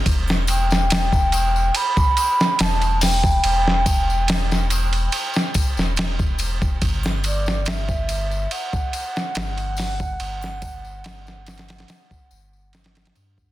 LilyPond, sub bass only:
\new Staff \with { instrumentName = "Sub bass" } { \clef bass \time 4/4 \key e \minor \tempo 4 = 71 e,,2 r4 e,,4 | e,,2 r8. e,,4~ e,,16 | g,,2 r4 g,,4 | g,,2 r8 g,,4 g,8 | }